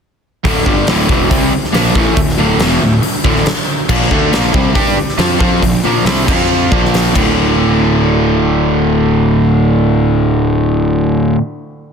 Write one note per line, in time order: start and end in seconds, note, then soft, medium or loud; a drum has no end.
0.44 0.65 D1 medium
0.44 0.64 D2 medium
0.44 0.66 A2 loud
0.44 0.65 D3 loud
0.44 kick loud
0.44 open hi-hat medium
0.65 0.86 G1 loud
0.65 0.86 G2 medium
0.65 0.87 D3 medium
0.65 0.87 G3 loud
0.65 kick medium
0.87 1.08 D1 medium
0.87 1.08 D2 loud
0.87 1.09 A2 loud
0.87 1.10 D3 loud
0.87 snare loud
0.87 open hi-hat medium
1.08 1.29 E1 medium
1.08 1.29 E2 medium
1.08 1.30 B2 medium
1.08 1.30 E3 loud
1.08 kick loud
1.30 1.51 C2 loud
1.30 1.51 C3 loud
1.30 1.52 G3 loud
1.30 1.52 C4 loud
1.30 kick loud
1.30 open hi-hat medium
1.51 muted picked electric bass stroke soft
1.51 muted overdriven electric guitar stroke medium
1.65 snare soft
1.72 1.93 A#1 medium
1.72 1.94 A#2 medium
1.72 1.95 F3 loud
1.72 1.95 A#3 loud
1.72 snare loud
1.72 open hi-hat medium
1.95 2.15 A1 loud
1.95 2.14 A2 loud
1.95 2.15 E3 loud
1.95 2.17 A3 loud
1.95 kick loud
2.15 2.37 D1 medium
2.15 2.33 D2 medium
2.15 2.33 A2 medium
2.15 kick loud
2.15 open hi-hat medium
2.29 snare soft
2.38 2.58 D1 medium
2.38 2.59 D2 medium
2.38 2.59 A2 loud
2.38 2.60 D3 loud
2.60 2.80 E1 medium
2.60 2.81 E2 loud
2.60 2.82 B2 loud
2.60 2.82 E3 loud
2.60 snare loud
2.60 open hi-hat medium
2.81 3.01 D1 medium
2.81 2.99 D2 medium
2.81 2.99 A2 medium
3.02 muted picked electric bass stroke soft
3.02 muted overdriven electric guitar stroke medium
3.02 open hi-hat medium
3.24 3.44 D1 medium
3.24 3.45 D2 loud
3.24 3.46 A2 loud
3.24 3.46 D3 loud
3.24 kick loud
3.36 snare soft
3.45 muted picked electric bass stroke soft
3.45 muted overdriven electric guitar stroke medium
3.45 snare loud
3.45 open hi-hat medium
3.89 4.09 A#1 loud
3.89 4.10 A#2 medium
3.89 4.10 F3 medium
3.89 4.11 A#3 loud
3.89 kick loud
3.89 crash medium
4.02 snare soft
4.11 4.31 D2 loud
4.11 4.32 D3 medium
4.11 4.32 A3 loud
4.11 4.33 D4 medium
4.11 kick medium
4.31 4.52 A#1 medium
4.31 4.53 A#2 loud
4.31 4.54 F3 medium
4.31 4.54 A#3 loud
4.31 snare loud
4.31 open hi-hat medium
4.53 4.74 C2 medium
4.53 4.75 C3 medium
4.53 4.73 G3 loud
4.53 4.74 C4 loud
4.53 kick loud
4.74 4.96 G2 loud
4.74 4.96 G3 medium
4.74 4.96 D4 loud
4.74 4.97 G4 loud
4.74 kick loud
4.74 open hi-hat medium
4.97 muted picked electric bass stroke soft
4.97 muted overdriven electric guitar stroke medium
5.09 snare soft
5.18 5.39 F2 loud
5.18 5.38 F3 medium
5.18 5.39 C4 medium
5.18 5.40 F4 loud
5.18 snare loud
5.18 open hi-hat medium
5.39 5.61 F2 loud
5.39 5.61 F3 loud
5.39 5.62 C4 loud
5.39 5.62 F4 loud
5.39 kick loud
5.62 5.82 A#1 medium
5.62 5.79 A#2 medium
5.62 5.80 F3 medium
5.62 kick medium
5.62 open hi-hat medium
5.83 6.04 A#1 medium
5.83 6.05 A#2 loud
5.83 6.06 F3 medium
5.83 6.06 A#3 medium
6.05 6.26 C2 medium
6.05 6.27 C3 medium
6.05 6.27 G3 loud
6.05 6.27 C4 loud
6.05 snare loud
6.05 open hi-hat medium
6.27 6.68 F2 loud
6.27 6.70 F3 loud
6.27 6.71 C4 medium
6.27 6.71 F4 loud
6.27 kick loud
6.27 crash loud
6.71 7.12 A#1 medium
6.71 7.14 A#2 medium
6.71 7.14 F3 loud
6.71 7.15 A#3 loud
6.71 kick loud
6.85 snare soft
6.94 snare loud
6.94 open hi-hat medium
7.14 11.35 D1 loud
7.14 11.38 D2 medium
7.14 11.40 A2 loud
7.14 11.41 D3 loud
7.14 kick loud
7.14 crash medium